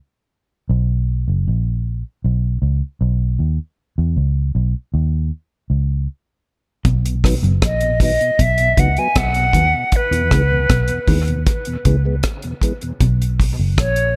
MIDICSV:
0, 0, Header, 1, 6, 480
1, 0, Start_track
1, 0, Key_signature, 5, "major"
1, 0, Tempo, 769231
1, 434, Time_signature, 4, 2, 24, 8
1, 8836, End_track
2, 0, Start_track
2, 0, Title_t, "Flute"
2, 0, Program_c, 0, 73
2, 4774, Note_on_c, 0, 75, 82
2, 4988, Note_off_c, 0, 75, 0
2, 5011, Note_on_c, 0, 75, 90
2, 5249, Note_on_c, 0, 76, 108
2, 5258, Note_off_c, 0, 75, 0
2, 5488, Note_on_c, 0, 78, 102
2, 5497, Note_off_c, 0, 76, 0
2, 5607, Note_on_c, 0, 80, 99
2, 5617, Note_off_c, 0, 78, 0
2, 5727, Note_on_c, 0, 78, 115
2, 5736, Note_off_c, 0, 80, 0
2, 6215, Note_on_c, 0, 71, 93
2, 6225, Note_off_c, 0, 78, 0
2, 7165, Note_off_c, 0, 71, 0
2, 8613, Note_on_c, 0, 73, 90
2, 8828, Note_off_c, 0, 73, 0
2, 8836, End_track
3, 0, Start_track
3, 0, Title_t, "Tonewheel organ"
3, 0, Program_c, 1, 16
3, 4399, Note_on_c, 1, 47, 59
3, 4463, Note_off_c, 1, 47, 0
3, 4522, Note_on_c, 1, 51, 72
3, 4522, Note_on_c, 1, 54, 70
3, 4525, Note_on_c, 1, 59, 88
3, 4585, Note_off_c, 1, 51, 0
3, 4585, Note_off_c, 1, 54, 0
3, 4586, Note_off_c, 1, 59, 0
3, 4645, Note_on_c, 1, 47, 51
3, 4706, Note_off_c, 1, 47, 0
3, 4885, Note_on_c, 1, 47, 57
3, 4946, Note_off_c, 1, 47, 0
3, 5002, Note_on_c, 1, 51, 78
3, 5003, Note_on_c, 1, 54, 71
3, 5006, Note_on_c, 1, 59, 87
3, 5065, Note_off_c, 1, 51, 0
3, 5065, Note_off_c, 1, 54, 0
3, 5067, Note_off_c, 1, 59, 0
3, 5124, Note_on_c, 1, 47, 63
3, 5185, Note_off_c, 1, 47, 0
3, 5364, Note_on_c, 1, 47, 63
3, 5425, Note_off_c, 1, 47, 0
3, 5483, Note_on_c, 1, 51, 73
3, 5483, Note_on_c, 1, 54, 67
3, 5485, Note_on_c, 1, 59, 78
3, 5545, Note_off_c, 1, 51, 0
3, 5545, Note_off_c, 1, 54, 0
3, 5546, Note_off_c, 1, 59, 0
3, 5604, Note_on_c, 1, 54, 68
3, 5610, Note_on_c, 1, 59, 76
3, 5665, Note_off_c, 1, 54, 0
3, 5668, Note_off_c, 1, 59, 0
3, 5845, Note_on_c, 1, 47, 63
3, 5906, Note_off_c, 1, 47, 0
3, 5959, Note_on_c, 1, 51, 74
3, 5959, Note_on_c, 1, 54, 66
3, 5961, Note_on_c, 1, 59, 73
3, 6023, Note_off_c, 1, 51, 0
3, 6023, Note_off_c, 1, 54, 0
3, 6025, Note_off_c, 1, 59, 0
3, 6079, Note_on_c, 1, 47, 58
3, 6143, Note_off_c, 1, 47, 0
3, 6318, Note_on_c, 1, 47, 60
3, 6319, Note_on_c, 1, 40, 58
3, 6382, Note_off_c, 1, 47, 0
3, 6383, Note_off_c, 1, 40, 0
3, 6435, Note_on_c, 1, 52, 75
3, 6437, Note_on_c, 1, 56, 71
3, 6440, Note_on_c, 1, 59, 88
3, 6501, Note_off_c, 1, 52, 0
3, 6503, Note_off_c, 1, 56, 0
3, 6504, Note_off_c, 1, 59, 0
3, 6560, Note_on_c, 1, 40, 52
3, 6560, Note_on_c, 1, 47, 54
3, 6623, Note_off_c, 1, 40, 0
3, 6624, Note_off_c, 1, 47, 0
3, 6795, Note_on_c, 1, 40, 56
3, 6796, Note_on_c, 1, 47, 55
3, 6861, Note_off_c, 1, 40, 0
3, 6862, Note_off_c, 1, 47, 0
3, 6913, Note_on_c, 1, 52, 81
3, 6916, Note_on_c, 1, 56, 76
3, 6918, Note_on_c, 1, 59, 85
3, 6981, Note_off_c, 1, 52, 0
3, 6982, Note_off_c, 1, 56, 0
3, 6983, Note_off_c, 1, 59, 0
3, 7042, Note_on_c, 1, 47, 60
3, 7043, Note_on_c, 1, 40, 61
3, 7104, Note_off_c, 1, 47, 0
3, 7105, Note_off_c, 1, 40, 0
3, 7284, Note_on_c, 1, 40, 62
3, 7284, Note_on_c, 1, 47, 63
3, 7346, Note_off_c, 1, 40, 0
3, 7346, Note_off_c, 1, 47, 0
3, 7400, Note_on_c, 1, 52, 74
3, 7403, Note_on_c, 1, 56, 73
3, 7405, Note_on_c, 1, 59, 81
3, 7464, Note_off_c, 1, 52, 0
3, 7466, Note_off_c, 1, 56, 0
3, 7467, Note_off_c, 1, 59, 0
3, 7522, Note_on_c, 1, 56, 64
3, 7527, Note_on_c, 1, 59, 70
3, 7585, Note_off_c, 1, 56, 0
3, 7588, Note_off_c, 1, 59, 0
3, 7763, Note_on_c, 1, 47, 60
3, 7764, Note_on_c, 1, 40, 64
3, 7826, Note_off_c, 1, 40, 0
3, 7826, Note_off_c, 1, 47, 0
3, 7881, Note_on_c, 1, 52, 69
3, 7881, Note_on_c, 1, 56, 68
3, 7884, Note_on_c, 1, 59, 83
3, 7945, Note_off_c, 1, 52, 0
3, 7945, Note_off_c, 1, 56, 0
3, 7947, Note_off_c, 1, 59, 0
3, 8004, Note_on_c, 1, 47, 57
3, 8005, Note_on_c, 1, 40, 58
3, 8066, Note_off_c, 1, 47, 0
3, 8067, Note_off_c, 1, 40, 0
3, 8836, End_track
4, 0, Start_track
4, 0, Title_t, "Clean electric guitar"
4, 0, Program_c, 2, 27
4, 4276, Note_on_c, 2, 47, 91
4, 4419, Note_off_c, 2, 47, 0
4, 4637, Note_on_c, 2, 42, 73
4, 4708, Note_off_c, 2, 42, 0
4, 4756, Note_on_c, 2, 46, 79
4, 4899, Note_off_c, 2, 46, 0
4, 5235, Note_on_c, 2, 47, 84
4, 5378, Note_off_c, 2, 47, 0
4, 5475, Note_on_c, 2, 49, 76
4, 5547, Note_off_c, 2, 49, 0
4, 5715, Note_on_c, 2, 47, 75
4, 5858, Note_off_c, 2, 47, 0
4, 5952, Note_on_c, 2, 51, 63
4, 6025, Note_off_c, 2, 51, 0
4, 6314, Note_on_c, 2, 52, 76
4, 6385, Note_off_c, 2, 52, 0
4, 6434, Note_on_c, 2, 49, 73
4, 6578, Note_off_c, 2, 49, 0
4, 6674, Note_on_c, 2, 47, 94
4, 6746, Note_off_c, 2, 47, 0
4, 6915, Note_on_c, 2, 51, 79
4, 7058, Note_off_c, 2, 51, 0
4, 7395, Note_on_c, 2, 49, 76
4, 7539, Note_off_c, 2, 49, 0
4, 8119, Note_on_c, 2, 47, 99
4, 8262, Note_off_c, 2, 47, 0
4, 8836, End_track
5, 0, Start_track
5, 0, Title_t, "Fingered electric bass"
5, 0, Program_c, 3, 33
5, 433, Note_on_c, 3, 35, 102
5, 777, Note_off_c, 3, 35, 0
5, 797, Note_on_c, 3, 30, 76
5, 909, Note_off_c, 3, 30, 0
5, 921, Note_on_c, 3, 34, 80
5, 1261, Note_off_c, 3, 34, 0
5, 1401, Note_on_c, 3, 35, 87
5, 1626, Note_off_c, 3, 35, 0
5, 1634, Note_on_c, 3, 37, 78
5, 1749, Note_off_c, 3, 37, 0
5, 1877, Note_on_c, 3, 35, 94
5, 2104, Note_off_c, 3, 35, 0
5, 2115, Note_on_c, 3, 39, 75
5, 2230, Note_off_c, 3, 39, 0
5, 2483, Note_on_c, 3, 40, 78
5, 2593, Note_off_c, 3, 40, 0
5, 2599, Note_on_c, 3, 37, 86
5, 2825, Note_off_c, 3, 37, 0
5, 2839, Note_on_c, 3, 35, 87
5, 2951, Note_off_c, 3, 35, 0
5, 3080, Note_on_c, 3, 39, 88
5, 3305, Note_off_c, 3, 39, 0
5, 3556, Note_on_c, 3, 37, 69
5, 3783, Note_off_c, 3, 37, 0
5, 4274, Note_on_c, 3, 35, 105
5, 4616, Note_off_c, 3, 35, 0
5, 4633, Note_on_c, 3, 30, 78
5, 4747, Note_off_c, 3, 30, 0
5, 4757, Note_on_c, 3, 34, 86
5, 5097, Note_off_c, 3, 34, 0
5, 5239, Note_on_c, 3, 35, 94
5, 5464, Note_off_c, 3, 35, 0
5, 5477, Note_on_c, 3, 37, 86
5, 5590, Note_off_c, 3, 37, 0
5, 5716, Note_on_c, 3, 35, 107
5, 5942, Note_off_c, 3, 35, 0
5, 5951, Note_on_c, 3, 39, 85
5, 6067, Note_off_c, 3, 39, 0
5, 6310, Note_on_c, 3, 40, 92
5, 6425, Note_off_c, 3, 40, 0
5, 6436, Note_on_c, 3, 37, 91
5, 6663, Note_off_c, 3, 37, 0
5, 6676, Note_on_c, 3, 35, 91
5, 6790, Note_off_c, 3, 35, 0
5, 6914, Note_on_c, 3, 39, 98
5, 7142, Note_off_c, 3, 39, 0
5, 7397, Note_on_c, 3, 37, 78
5, 7624, Note_off_c, 3, 37, 0
5, 8117, Note_on_c, 3, 35, 99
5, 8459, Note_off_c, 3, 35, 0
5, 8482, Note_on_c, 3, 30, 88
5, 8593, Note_off_c, 3, 30, 0
5, 8598, Note_on_c, 3, 34, 86
5, 8836, Note_off_c, 3, 34, 0
5, 8836, End_track
6, 0, Start_track
6, 0, Title_t, "Drums"
6, 4274, Note_on_c, 9, 36, 98
6, 4274, Note_on_c, 9, 42, 67
6, 4336, Note_off_c, 9, 36, 0
6, 4336, Note_off_c, 9, 42, 0
6, 4402, Note_on_c, 9, 42, 56
6, 4465, Note_off_c, 9, 42, 0
6, 4517, Note_on_c, 9, 36, 96
6, 4521, Note_on_c, 9, 37, 61
6, 4526, Note_on_c, 9, 46, 54
6, 4580, Note_off_c, 9, 36, 0
6, 4584, Note_off_c, 9, 37, 0
6, 4589, Note_off_c, 9, 46, 0
6, 4643, Note_on_c, 9, 42, 33
6, 4705, Note_off_c, 9, 42, 0
6, 4756, Note_on_c, 9, 36, 111
6, 4757, Note_on_c, 9, 37, 99
6, 4762, Note_on_c, 9, 42, 89
6, 4818, Note_off_c, 9, 36, 0
6, 4819, Note_off_c, 9, 37, 0
6, 4825, Note_off_c, 9, 42, 0
6, 4871, Note_on_c, 9, 42, 57
6, 4933, Note_off_c, 9, 42, 0
6, 4992, Note_on_c, 9, 36, 95
6, 4994, Note_on_c, 9, 46, 67
6, 5055, Note_off_c, 9, 36, 0
6, 5057, Note_off_c, 9, 46, 0
6, 5121, Note_on_c, 9, 42, 36
6, 5184, Note_off_c, 9, 42, 0
6, 5236, Note_on_c, 9, 36, 98
6, 5238, Note_on_c, 9, 42, 86
6, 5298, Note_off_c, 9, 36, 0
6, 5301, Note_off_c, 9, 42, 0
6, 5352, Note_on_c, 9, 42, 55
6, 5414, Note_off_c, 9, 42, 0
6, 5475, Note_on_c, 9, 36, 88
6, 5476, Note_on_c, 9, 42, 75
6, 5537, Note_off_c, 9, 36, 0
6, 5538, Note_off_c, 9, 42, 0
6, 5595, Note_on_c, 9, 42, 38
6, 5657, Note_off_c, 9, 42, 0
6, 5713, Note_on_c, 9, 42, 81
6, 5715, Note_on_c, 9, 36, 108
6, 5717, Note_on_c, 9, 37, 101
6, 5775, Note_off_c, 9, 42, 0
6, 5777, Note_off_c, 9, 36, 0
6, 5779, Note_off_c, 9, 37, 0
6, 5830, Note_on_c, 9, 42, 47
6, 5893, Note_off_c, 9, 42, 0
6, 5949, Note_on_c, 9, 36, 91
6, 5955, Note_on_c, 9, 42, 67
6, 6011, Note_off_c, 9, 36, 0
6, 6017, Note_off_c, 9, 42, 0
6, 6189, Note_on_c, 9, 42, 71
6, 6192, Note_on_c, 9, 36, 98
6, 6252, Note_off_c, 9, 42, 0
6, 6254, Note_off_c, 9, 36, 0
6, 6318, Note_on_c, 9, 42, 51
6, 6381, Note_off_c, 9, 42, 0
6, 6435, Note_on_c, 9, 36, 97
6, 6435, Note_on_c, 9, 37, 73
6, 6440, Note_on_c, 9, 42, 71
6, 6497, Note_off_c, 9, 36, 0
6, 6497, Note_off_c, 9, 37, 0
6, 6502, Note_off_c, 9, 42, 0
6, 6674, Note_on_c, 9, 36, 120
6, 6676, Note_on_c, 9, 37, 101
6, 6681, Note_on_c, 9, 42, 87
6, 6737, Note_off_c, 9, 36, 0
6, 6738, Note_off_c, 9, 37, 0
6, 6744, Note_off_c, 9, 42, 0
6, 6787, Note_on_c, 9, 42, 56
6, 6850, Note_off_c, 9, 42, 0
6, 6911, Note_on_c, 9, 36, 95
6, 6911, Note_on_c, 9, 46, 73
6, 6973, Note_off_c, 9, 46, 0
6, 6974, Note_off_c, 9, 36, 0
6, 7036, Note_on_c, 9, 42, 37
6, 7099, Note_off_c, 9, 42, 0
6, 7154, Note_on_c, 9, 42, 81
6, 7155, Note_on_c, 9, 36, 114
6, 7217, Note_off_c, 9, 36, 0
6, 7217, Note_off_c, 9, 42, 0
6, 7270, Note_on_c, 9, 42, 50
6, 7332, Note_off_c, 9, 42, 0
6, 7395, Note_on_c, 9, 36, 79
6, 7395, Note_on_c, 9, 42, 71
6, 7457, Note_off_c, 9, 42, 0
6, 7458, Note_off_c, 9, 36, 0
6, 7632, Note_on_c, 9, 42, 87
6, 7636, Note_on_c, 9, 36, 101
6, 7636, Note_on_c, 9, 37, 121
6, 7694, Note_off_c, 9, 42, 0
6, 7698, Note_off_c, 9, 36, 0
6, 7698, Note_off_c, 9, 37, 0
6, 7752, Note_on_c, 9, 42, 43
6, 7815, Note_off_c, 9, 42, 0
6, 7872, Note_on_c, 9, 36, 83
6, 7879, Note_on_c, 9, 42, 78
6, 7934, Note_off_c, 9, 36, 0
6, 7942, Note_off_c, 9, 42, 0
6, 7996, Note_on_c, 9, 42, 38
6, 8058, Note_off_c, 9, 42, 0
6, 8115, Note_on_c, 9, 36, 97
6, 8115, Note_on_c, 9, 42, 67
6, 8178, Note_off_c, 9, 36, 0
6, 8178, Note_off_c, 9, 42, 0
6, 8247, Note_on_c, 9, 42, 55
6, 8309, Note_off_c, 9, 42, 0
6, 8359, Note_on_c, 9, 36, 95
6, 8366, Note_on_c, 9, 46, 53
6, 8422, Note_off_c, 9, 36, 0
6, 8428, Note_off_c, 9, 46, 0
6, 8598, Note_on_c, 9, 36, 119
6, 8600, Note_on_c, 9, 37, 91
6, 8605, Note_on_c, 9, 42, 89
6, 8660, Note_off_c, 9, 36, 0
6, 8662, Note_off_c, 9, 37, 0
6, 8668, Note_off_c, 9, 42, 0
6, 8711, Note_on_c, 9, 42, 56
6, 8774, Note_off_c, 9, 42, 0
6, 8836, End_track
0, 0, End_of_file